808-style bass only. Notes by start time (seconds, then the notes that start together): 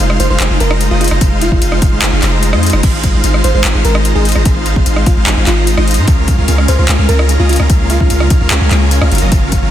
0.00 F1
0.20 F1
0.30 F1
0.40 F1
0.50 F1
0.60 F1
0.91 F1
1.11 F1
1.52 F1
1.62 F1
1.92 F1
2.02 F1
2.13 F1
2.23 F1
2.53 F2
2.73 F1
3.14 G#1
3.24 G#1
3.44 G#1
3.54 G#1
3.64 G#1
3.75 G#1
3.85 G#1
4.15 G#1
4.36 G#1
4.76 G#1
4.86 G#1
5.17 G#1
5.27 G#1
5.37 G#1
5.47 G#1
5.78 G#1
5.98 G#2
6.08 C#2
6.38 C#2
6.48 C#2
6.68 C#2
6.79 C#2
6.89 C#2
6.99 C#2
7.09 C#2
7.40 C#2
7.60 C#2
7.70 C#2
8.00 C#2
8.10 C#2
8.31 C#2
8.41 C#2
8.51 C#2
8.61 C#2
8.71 C#2
9.02 C#2
9.12 F#1
9.22 F#1
9.63 F#1